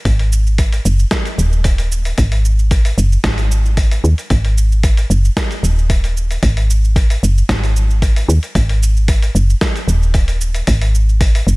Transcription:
0.05 G#1, kick, open hi-hat, cabasa
0.19 open hi-hat
0.32 cabasa
0.47 cabasa
0.58 kick, open hi-hat, cabasa
0.73 open hi-hat, cabasa
0.85 F#1, cabasa
0.99 cabasa
1.11 kick, snare, open hi-hat, cabasa
1.25 open hi-hat, cabasa
1.38 D#1, cabasa
1.52 cabasa
1.64 kick, open hi-hat, cabasa
1.78 open hi-hat, cabasa
1.92 cabasa
2.05 open hi-hat, cabasa
2.18 G#1, kick, open hi-hat, cabasa
2.32 open hi-hat
2.45 cabasa
2.59 cabasa
2.71 kick, open hi-hat, cabasa
2.85 open hi-hat, cabasa
2.98 F#1, cabasa
3.12 cabasa
3.24 G#1, kick, snare, open hi-hat, cabasa
3.38 open hi-hat, cabasa
3.51 cabasa
3.66 cabasa
3.77 kick, open hi-hat, cabasa
3.91 open hi-hat, cabasa
4.04 D#2, cabasa
4.18 open hi-hat, cabasa
4.30 G#1, kick, open hi-hat, cabasa
4.45 open hi-hat
4.58 cabasa
4.72 cabasa
4.83 kick, open hi-hat, cabasa
4.97 open hi-hat, cabasa
5.10 F#1, cabasa
5.25 cabasa
5.37 kick, snare, open hi-hat, cabasa
5.51 open hi-hat, cabasa
5.63 D#1, cabasa
5.78 cabasa
5.90 kick, open hi-hat, cabasa
6.04 open hi-hat, cabasa
6.17 cabasa
6.31 open hi-hat, cabasa
6.43 G#1, kick, open hi-hat, cabasa
6.57 open hi-hat
6.70 cabasa
6.84 cabasa
6.96 kick, open hi-hat, cabasa
7.10 open hi-hat, cabasa
7.23 F#1, cabasa
7.38 cabasa
7.49 G#1, kick, snare, open hi-hat, cabasa
7.64 open hi-hat, cabasa
7.76 cabasa
7.90 cabasa
8.02 kick, open hi-hat, cabasa
8.16 open hi-hat, cabasa
8.29 D#2, cabasa
8.43 open hi-hat, cabasa
8.55 G#1, kick, open hi-hat, cabasa
8.69 open hi-hat
8.83 cabasa
8.97 cabasa
9.08 kick, open hi-hat, cabasa
9.22 open hi-hat, cabasa
9.35 F#1, cabasa
9.50 cabasa
9.61 kick, snare, open hi-hat, cabasa
9.76 open hi-hat, cabasa
9.88 D#1, cabasa
10.03 cabasa
10.14 kick, open hi-hat, cabasa
10.28 open hi-hat, cabasa
10.41 cabasa
10.54 open hi-hat, cabasa
10.67 G#1, kick, open hi-hat, cabasa
10.81 open hi-hat
10.95 cabasa
11.09 cabasa
11.21 kick, open hi-hat, cabasa
11.35 open hi-hat, cabasa
11.47 F#1, cabasa

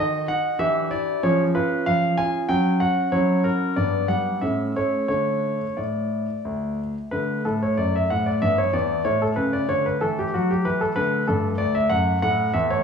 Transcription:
Already playing: F#4 D#5
0.00 D#3
0.28 D#4 F#5
0.59 E3 D4 G4 E5
0.91 E4 D5
1.23 F3 C#4 G#4 C#5
1.55 F4 B4
1.86 F3 F5
2.18 F4 G#5
2.49 F#3 C#4 F#4 G5
2.80 F#4 F#5
3.12 F#3 C#4 E4 C#5
3.44 F#4 A#4
3.76 G2 B3 D4 D5
4.08 G3 F#5
4.41 A2 A3 C#4 E5
4.76 A3 C#5
5.08 D3 A3 D4 C#5
5.77 A2 D5
6.45 D2
7.11 D3 A3 B4
7.45 A2 A4
7.63 C#5
7.77 F#2 D5
7.96 E5
8.10 A2 F#5
8.26 D5
8.42 G2 B3 E5
8.58 C#5
8.73 E2 D5
9.05 A2 A3 C#5
9.22 A4
9.36 C#3 B4
9.53 D5
9.68 D3 C#5
9.86 B4
10.01 E3 A4
10.19 G4
10.34 F#3 F#4
10.51 G4
10.65 E3 B4
10.81 A4
10.96 D3 A3 B4
11.27 G2 A4
11.58 D2 D5
11.75 E5
11.90 F#2 F#5
12.22 A2 A3 F#5
12.54 E2 E5
12.70 C#5

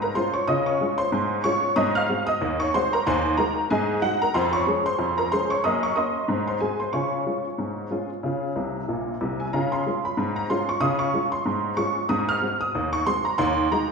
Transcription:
Already playing: G#2
0.02 A#4 A#5
0.15 G#3 C#4 F4 C5 C6
0.33 C#5 C#6
0.48 C#3 F4 D#5 D#6
0.66 C#5 C#6
0.81 G#3 C#4 F4
0.98 C5 C6
1.12 G#2
1.44 G#3 C#4 F4 C#5 C#6
1.76 G#2 C4 D#5 D#6
1.95 F5 F6
2.09 G#3 C4 F#4
2.27 D#5 D#6
2.41 D#2
2.60 C#5 C#6
2.74 G#3 C4 F#4 C5 C6
2.93 A#4 A#5
3.07 D#2 C5 G#5 C6
3.37 G#3 D#4 F#4 A#4 A#5
3.70 G#2 G#4 D#5 G#5
4.02 G#3 D#4 F#4 F#5
4.22 A#4 A#5
4.34 F2 C5 C6
4.53 C#5 C#6
4.67 G#3 C#4 G#4
4.86 C5 C6
4.99 F2
5.18 A#4 A#5
5.32 G#3 C#4 G#4 C5 C6
5.50 C#5 C#6
5.64 F#2 A#3 D#5 D#6
5.83 C#5 C#6
5.96 A#3 C#4 F#4 D#5 C6 D#6
6.28 G#2 C4
6.48 C5 C6
6.60 G#3 C4 F#4 G#4 G#5
6.80 C5 C6
6.93 C#3 F4 C#5 G#5 C#6
7.26 G#3 C#4 F4
7.58 G#2
7.91 G#3 C#4 F4
8.23 C#3 F4
8.56 C2 C3
8.88 A#1 A#2
9.21 C2 C3
9.40 G#5
9.53 C#3 F4 A#5
9.72 C6
9.86 G#3 C#4 F4
10.05 B5
10.17 G#2
10.36 A#5
10.50 G#3 C#4 F4 C6
10.69 C#6
10.80 C#3 F4 D#6
10.99 C#6
11.14 G#3 C#4 F4
11.32 C6
11.46 G#2
11.77 G#3 C#4 F4 C#6
12.09 G#2 C4 D#6
12.29 F6
12.42 G#3 C4 F#4
12.61 D#6
12.75 D#2
12.93 C#6
13.06 G#3 C4 F#4 C6
13.25 A#5
13.38 D#2 C6
13.72 G#3 D#4 F#4 A#5

